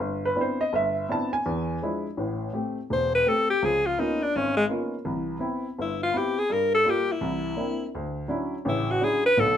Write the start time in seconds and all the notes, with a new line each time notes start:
0.00 G1
0.25 B4
0.36 B3 C4 D4 E4
0.41 C5
0.61 D#5
0.73 G1 E5
1.09 B3 C4 D4 E4 A5
1.33 G#5
1.46 E2
1.82 F3 G#3 D4 E4
2.17 A1 A2
2.53 A3 C4 G4
2.90 E1 C5
3.15 B4
3.26 A3 C4 G4 A4
3.50 G4
3.62 C#2 F3 G#4
3.86 F4
3.98 A#3 B3 C#4 D#4 F4
4.22 D4
4.36 G#1 C#4
4.57 G#3
4.69 A#3 B3 C#4 D#4 F4
5.05 C2 E3
5.39 B3 C4 E4
5.79 G1 E4
6.03 F4
6.14 B3 C4 E4 G4
6.39 G#4
6.50 G2 A#4
6.75 A4
6.85 G3 A#3 F4
6.90 G4
7.12 E4
7.21 C2 E3
7.57 A#3 C4 D4 E4
7.95 D2
8.28 F#3 C#4 D4 E4
8.65 A1 C#3 E4
8.91 F#4
9.01 F#3 C#4 D4 E4 G#4
9.26 B4
9.37 B1 B2 A4